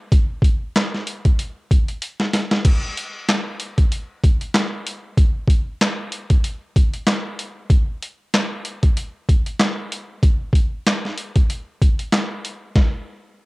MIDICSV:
0, 0, Header, 1, 2, 480
1, 0, Start_track
1, 0, Tempo, 631579
1, 93, Time_signature, 4, 2, 24, 8
1, 10225, End_track
2, 0, Start_track
2, 0, Title_t, "Drums"
2, 92, Note_on_c, 9, 36, 120
2, 94, Note_on_c, 9, 42, 93
2, 168, Note_off_c, 9, 36, 0
2, 170, Note_off_c, 9, 42, 0
2, 321, Note_on_c, 9, 36, 92
2, 339, Note_on_c, 9, 42, 62
2, 397, Note_off_c, 9, 36, 0
2, 415, Note_off_c, 9, 42, 0
2, 577, Note_on_c, 9, 38, 124
2, 582, Note_on_c, 9, 42, 88
2, 583, Note_on_c, 9, 39, 95
2, 653, Note_off_c, 9, 38, 0
2, 658, Note_off_c, 9, 42, 0
2, 659, Note_off_c, 9, 39, 0
2, 718, Note_on_c, 9, 38, 36
2, 794, Note_off_c, 9, 38, 0
2, 814, Note_on_c, 9, 42, 67
2, 890, Note_off_c, 9, 42, 0
2, 951, Note_on_c, 9, 36, 92
2, 951, Note_on_c, 9, 42, 50
2, 1027, Note_off_c, 9, 36, 0
2, 1027, Note_off_c, 9, 42, 0
2, 1057, Note_on_c, 9, 42, 78
2, 1133, Note_off_c, 9, 42, 0
2, 1299, Note_on_c, 9, 36, 97
2, 1302, Note_on_c, 9, 42, 68
2, 1375, Note_off_c, 9, 36, 0
2, 1378, Note_off_c, 9, 42, 0
2, 1431, Note_on_c, 9, 42, 45
2, 1507, Note_off_c, 9, 42, 0
2, 1534, Note_on_c, 9, 42, 97
2, 1610, Note_off_c, 9, 42, 0
2, 1669, Note_on_c, 9, 38, 65
2, 1745, Note_off_c, 9, 38, 0
2, 1773, Note_on_c, 9, 38, 89
2, 1777, Note_on_c, 9, 42, 70
2, 1849, Note_off_c, 9, 38, 0
2, 1853, Note_off_c, 9, 42, 0
2, 1909, Note_on_c, 9, 38, 89
2, 1985, Note_off_c, 9, 38, 0
2, 2012, Note_on_c, 9, 36, 121
2, 2012, Note_on_c, 9, 49, 95
2, 2013, Note_on_c, 9, 42, 91
2, 2088, Note_off_c, 9, 36, 0
2, 2088, Note_off_c, 9, 49, 0
2, 2089, Note_off_c, 9, 42, 0
2, 2259, Note_on_c, 9, 42, 63
2, 2335, Note_off_c, 9, 42, 0
2, 2497, Note_on_c, 9, 38, 121
2, 2501, Note_on_c, 9, 42, 88
2, 2502, Note_on_c, 9, 39, 93
2, 2573, Note_off_c, 9, 38, 0
2, 2577, Note_off_c, 9, 42, 0
2, 2578, Note_off_c, 9, 39, 0
2, 2732, Note_on_c, 9, 42, 70
2, 2808, Note_off_c, 9, 42, 0
2, 2870, Note_on_c, 9, 42, 50
2, 2871, Note_on_c, 9, 36, 90
2, 2946, Note_off_c, 9, 42, 0
2, 2947, Note_off_c, 9, 36, 0
2, 2977, Note_on_c, 9, 42, 76
2, 3053, Note_off_c, 9, 42, 0
2, 3219, Note_on_c, 9, 36, 94
2, 3221, Note_on_c, 9, 42, 67
2, 3295, Note_off_c, 9, 36, 0
2, 3297, Note_off_c, 9, 42, 0
2, 3351, Note_on_c, 9, 42, 45
2, 3427, Note_off_c, 9, 42, 0
2, 3452, Note_on_c, 9, 38, 112
2, 3454, Note_on_c, 9, 42, 101
2, 3457, Note_on_c, 9, 39, 91
2, 3528, Note_off_c, 9, 38, 0
2, 3530, Note_off_c, 9, 42, 0
2, 3533, Note_off_c, 9, 39, 0
2, 3698, Note_on_c, 9, 42, 71
2, 3774, Note_off_c, 9, 42, 0
2, 3932, Note_on_c, 9, 36, 125
2, 3934, Note_on_c, 9, 42, 90
2, 4008, Note_off_c, 9, 36, 0
2, 4010, Note_off_c, 9, 42, 0
2, 4161, Note_on_c, 9, 36, 89
2, 4178, Note_on_c, 9, 42, 64
2, 4237, Note_off_c, 9, 36, 0
2, 4254, Note_off_c, 9, 42, 0
2, 4416, Note_on_c, 9, 38, 119
2, 4421, Note_on_c, 9, 42, 88
2, 4422, Note_on_c, 9, 39, 99
2, 4492, Note_off_c, 9, 38, 0
2, 4497, Note_off_c, 9, 42, 0
2, 4498, Note_off_c, 9, 39, 0
2, 4652, Note_on_c, 9, 42, 70
2, 4728, Note_off_c, 9, 42, 0
2, 4789, Note_on_c, 9, 42, 51
2, 4790, Note_on_c, 9, 36, 90
2, 4865, Note_off_c, 9, 42, 0
2, 4866, Note_off_c, 9, 36, 0
2, 4896, Note_on_c, 9, 42, 76
2, 4972, Note_off_c, 9, 42, 0
2, 5138, Note_on_c, 9, 36, 94
2, 5141, Note_on_c, 9, 42, 67
2, 5214, Note_off_c, 9, 36, 0
2, 5217, Note_off_c, 9, 42, 0
2, 5272, Note_on_c, 9, 42, 44
2, 5348, Note_off_c, 9, 42, 0
2, 5372, Note_on_c, 9, 38, 115
2, 5374, Note_on_c, 9, 42, 98
2, 5378, Note_on_c, 9, 39, 94
2, 5448, Note_off_c, 9, 38, 0
2, 5450, Note_off_c, 9, 42, 0
2, 5454, Note_off_c, 9, 39, 0
2, 5618, Note_on_c, 9, 42, 70
2, 5694, Note_off_c, 9, 42, 0
2, 5852, Note_on_c, 9, 36, 123
2, 5854, Note_on_c, 9, 42, 91
2, 5928, Note_off_c, 9, 36, 0
2, 5930, Note_off_c, 9, 42, 0
2, 6100, Note_on_c, 9, 42, 64
2, 6176, Note_off_c, 9, 42, 0
2, 6337, Note_on_c, 9, 38, 118
2, 6342, Note_on_c, 9, 42, 89
2, 6343, Note_on_c, 9, 39, 97
2, 6413, Note_off_c, 9, 38, 0
2, 6418, Note_off_c, 9, 42, 0
2, 6419, Note_off_c, 9, 39, 0
2, 6573, Note_on_c, 9, 42, 69
2, 6649, Note_off_c, 9, 42, 0
2, 6710, Note_on_c, 9, 42, 51
2, 6711, Note_on_c, 9, 36, 90
2, 6786, Note_off_c, 9, 42, 0
2, 6787, Note_off_c, 9, 36, 0
2, 6817, Note_on_c, 9, 42, 79
2, 6893, Note_off_c, 9, 42, 0
2, 7059, Note_on_c, 9, 36, 94
2, 7062, Note_on_c, 9, 42, 69
2, 7135, Note_off_c, 9, 36, 0
2, 7138, Note_off_c, 9, 42, 0
2, 7192, Note_on_c, 9, 42, 46
2, 7268, Note_off_c, 9, 42, 0
2, 7292, Note_on_c, 9, 38, 111
2, 7295, Note_on_c, 9, 42, 102
2, 7298, Note_on_c, 9, 39, 93
2, 7368, Note_off_c, 9, 38, 0
2, 7371, Note_off_c, 9, 42, 0
2, 7374, Note_off_c, 9, 39, 0
2, 7539, Note_on_c, 9, 42, 70
2, 7615, Note_off_c, 9, 42, 0
2, 7773, Note_on_c, 9, 36, 122
2, 7775, Note_on_c, 9, 42, 91
2, 7849, Note_off_c, 9, 36, 0
2, 7851, Note_off_c, 9, 42, 0
2, 8002, Note_on_c, 9, 36, 90
2, 8020, Note_on_c, 9, 42, 63
2, 8078, Note_off_c, 9, 36, 0
2, 8096, Note_off_c, 9, 42, 0
2, 8258, Note_on_c, 9, 38, 121
2, 8263, Note_on_c, 9, 42, 88
2, 8264, Note_on_c, 9, 39, 97
2, 8334, Note_off_c, 9, 38, 0
2, 8339, Note_off_c, 9, 42, 0
2, 8340, Note_off_c, 9, 39, 0
2, 8399, Note_on_c, 9, 38, 37
2, 8475, Note_off_c, 9, 38, 0
2, 8494, Note_on_c, 9, 42, 69
2, 8570, Note_off_c, 9, 42, 0
2, 8630, Note_on_c, 9, 42, 52
2, 8632, Note_on_c, 9, 36, 91
2, 8706, Note_off_c, 9, 42, 0
2, 8708, Note_off_c, 9, 36, 0
2, 8739, Note_on_c, 9, 42, 79
2, 8815, Note_off_c, 9, 42, 0
2, 8979, Note_on_c, 9, 36, 94
2, 8982, Note_on_c, 9, 42, 68
2, 9055, Note_off_c, 9, 36, 0
2, 9058, Note_off_c, 9, 42, 0
2, 9113, Note_on_c, 9, 42, 45
2, 9189, Note_off_c, 9, 42, 0
2, 9213, Note_on_c, 9, 38, 116
2, 9216, Note_on_c, 9, 42, 104
2, 9219, Note_on_c, 9, 39, 94
2, 9289, Note_off_c, 9, 38, 0
2, 9292, Note_off_c, 9, 42, 0
2, 9295, Note_off_c, 9, 39, 0
2, 9460, Note_on_c, 9, 42, 71
2, 9536, Note_off_c, 9, 42, 0
2, 9694, Note_on_c, 9, 36, 112
2, 9695, Note_on_c, 9, 38, 87
2, 9770, Note_off_c, 9, 36, 0
2, 9771, Note_off_c, 9, 38, 0
2, 10225, End_track
0, 0, End_of_file